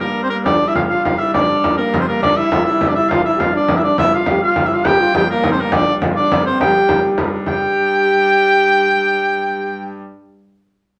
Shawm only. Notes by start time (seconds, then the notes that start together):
0.00 A#4
0.23 C5
0.30 A#4
0.45 D5
0.68 E5
0.75 F5
0.89 F5
1.04 F5
1.18 E5
1.33 D5
1.77 A#4
2.00 C5
2.07 A#4
2.22 D5
2.37 E5
2.65 E5
2.88 D5
2.95 E5
3.09 F5
3.25 E5
3.39 F5
3.56 D5
3.77 E5
3.83 D5
3.98 E5
4.14 F5
4.43 F5
4.66 E5
4.73 F5
4.87 G5
5.17 G5
5.30 A#4
5.51 C5
5.60 A#4
5.73 D5
6.16 D5
6.46 C5
6.60 G5
7.47 G5